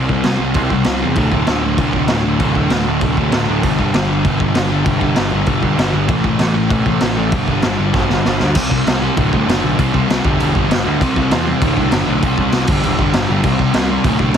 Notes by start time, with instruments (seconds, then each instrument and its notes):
Already playing: picked electric bass C2
0.09 distorted electric guitar C3 G3 C4, kick
0.24 picked electric bass C2, distorted electric guitar C3 G3 C4, snare, crash
0.39 picked electric bass C2, distorted electric guitar C3 G3 C4
0.54 picked electric bass C2, distorted electric guitar C3 G3 C4, kick, crash
0.70 distorted electric guitar C3 G3 C4, kick
0.84 picked electric bass C2, distorted electric guitar C3 G3 C4, snare, crash
1.02 picked electric bass E2, distorted electric guitar C3 G3 C4
1.16 picked electric bass D1, distorted electric guitar D2 A2 D3, kick, crash
1.31 picked electric bass D1, distorted electric guitar D2 A2 D3, kick
1.47 picked electric bass D1, distorted electric guitar D2 A2 D3, snare, crash
1.63 distorted electric guitar D2 A2 D3
1.78 picked electric bass D1, distorted electric guitar D2 A2 D3, kick, crash
1.93 picked electric bass D1, distorted electric guitar D2 A2 D3, kick
2.08 picked electric bass D1, distorted electric guitar D2 A2, snare, crash
2.12 distorted electric guitar D3
2.24 distorted electric guitar D2 A2 D3
2.40 picked electric bass D1, distorted electric guitar D2 A2 D3, kick, crash
2.55 distorted electric guitar D2 A2 D3, kick
2.70 picked electric bass D1, distorted electric guitar D2 A2 D3, snare, crash
2.87 picked electric bass D1, distorted electric guitar D2 A2 D3
3.01 picked electric bass D1, distorted electric guitar D2 A2, kick, crash
3.05 distorted electric guitar D3
3.17 distorted electric guitar D2 A2 D3, kick
3.32 picked electric bass D1, distorted electric guitar D2 A2 D3, snare, crash
3.48 picked electric bass D1, distorted electric guitar D2 A2 D3
3.63 picked electric bass G1, distorted electric guitar G2 D3 G3, kick, crash
3.79 picked electric bass G1, distorted electric guitar G2 D3 G3, kick
3.94 picked electric bass G1, distorted electric guitar G2 D3 G3, snare, crash
4.09 distorted electric guitar G2 D3 G3
4.25 picked electric bass G1, distorted electric guitar G2 D3 G3, kick, crash
4.40 picked electric bass G1, distorted electric guitar G2 D3 G3, kick
4.55 picked electric bass G1, distorted electric guitar G2 D3 G3, snare, crash
4.71 distorted electric guitar G2 D3 G3
4.85 picked electric bass G1, distorted electric guitar G2 D3 G3, kick, crash
5.01 distorted electric guitar G2 D3 G3, kick
5.16 picked electric bass G1, distorted electric guitar G2 D3 G3, snare, crash
5.32 picked electric bass G1, distorted electric guitar G2 D3 G3
5.46 picked electric bass G1, distorted electric guitar G2 D3 G3, kick, crash
5.63 distorted electric guitar G2 D3 G3, kick
5.77 picked electric bass G1, distorted electric guitar G2 D3 G3, snare, crash
5.93 picked electric bass G1, distorted electric guitar G2 D3 G3
6.08 picked electric bass A1, distorted electric guitar A2 E3 A3, kick, crash
6.24 picked electric bass A1, distorted electric guitar A2 E3 A3, kick
6.39 picked electric bass A1, distorted electric guitar A2 E3 A3, snare, crash
6.54 distorted electric guitar A2 E3 A3
6.69 picked electric bass A1, distorted electric guitar A2 E3 A3, kick, crash
6.85 picked electric bass A1, distorted electric guitar A2 E3 A3, kick
7.01 picked electric bass A1, distorted electric guitar A2 E3 A3, snare, crash
7.17 distorted electric guitar A2 E3 A3
7.32 picked electric bass G1, distorted electric guitar G2 D3 G3, kick, crash
7.48 distorted electric guitar G2 D3 G3, kick
7.62 picked electric bass G1, distorted electric guitar G2 D3, snare, crash
7.67 distorted electric guitar G3
7.78 picked electric bass G1, distorted electric guitar G2 D3 G3
7.93 picked electric bass G1, distorted electric guitar G2 D3 G3, kick, snare
8.10 distorted electric guitar G2 D3 G3, snare
8.25 picked electric bass G1, distorted electric guitar G2 D3 G3, snare
8.40 picked electric bass D2, distorted electric guitar G2 D3 G3, snare
8.55 picked electric bass C2, distorted electric guitar C3 G3 C4, kick, crash
8.70 picked electric bass C2, distorted electric guitar C3 G3 C4, kick
8.85 picked electric bass C2, distorted electric guitar C3 G3 C4, snare, crash
9.01 distorted electric guitar C3 G3 C4
9.16 picked electric bass D1, distorted electric guitar D2 A2 D3, kick, crash
9.32 picked electric bass C2, distorted electric guitar D2 A2 D3, kick
9.47 picked electric bass F#1, distorted electric guitar D2 A2 D3, snare, crash
9.62 picked electric bass B1, distorted electric guitar D2 A2 D3
9.79 picked electric bass C2, distorted electric guitar C3 G3 C4, kick, crash
9.93 picked electric bass C2, distorted electric guitar C3 G3 C4, kick
10.08 picked electric bass C2, distorted electric guitar C3 G3 C4, snare, crash
10.23 picked electric bass G1, distorted electric guitar G2 D3 G3, kick
10.39 picked electric bass E1, distorted electric guitar G2 D3 G3, crash
10.54 picked electric bass G1, distorted electric guitar G2 D3 G3, kick
10.69 picked electric bass G1, distorted electric guitar G2 D3 G3, snare, crash
10.85 picked electric bass D2, distorted electric guitar G2 D3 G3
11.00 picked electric bass C2, distorted electric guitar C3 G3 C4, kick, crash
11.16 picked electric bass C2, distorted electric guitar C3 G3 C4, kick
11.30 picked electric bass E2, distorted electric guitar C3 G3 C4, snare, crash
11.46 distorted electric guitar C3 G3 C4
11.61 picked electric bass D1, distorted electric guitar D2 A2 D3, kick, crash
11.77 picked electric bass C2, distorted electric guitar D2 A2 D3, kick
11.92 picked electric bass F#1, distorted electric guitar D2 A2 D3, snare, crash
12.07 picked electric bass B1, distorted electric guitar D2 A2 D3
12.23 picked electric bass C2, distorted electric guitar C3 G3 C4, kick, crash
12.38 picked electric bass C2, distorted electric guitar C3 G3 C4, kick
12.52 picked electric bass C2, distorted electric guitar C3 G3, snare, crash
12.57 distorted electric guitar C4
12.67 picked electric bass G1, distorted electric guitar G2 D3 G3, kick, crash
12.84 picked electric bass E1, distorted electric guitar G2 D3 G3, crash
12.98 picked electric bass G1, distorted electric guitar G2 D3 G3, kick
13.13 picked electric bass G1, distorted electric guitar G2 D3 G3, snare, crash
13.29 picked electric bass G1, distorted electric guitar G2 D3 G3
13.44 picked electric bass C2, distorted electric guitar C3 G3 C4, kick, crash
13.59 picked electric bass C2, distorted electric guitar C3 G3 C4, kick
13.74 picked electric bass C2, distorted electric guitar C3 G3 C4, snare, crash
13.90 distorted electric guitar C3 G3 C4
14.04 picked electric bass D1, distorted electric guitar D2 A2 D3, kick, crash
14.19 picked electric bass C2, distorted electric guitar D2 A2 D3, kick
14.34 crash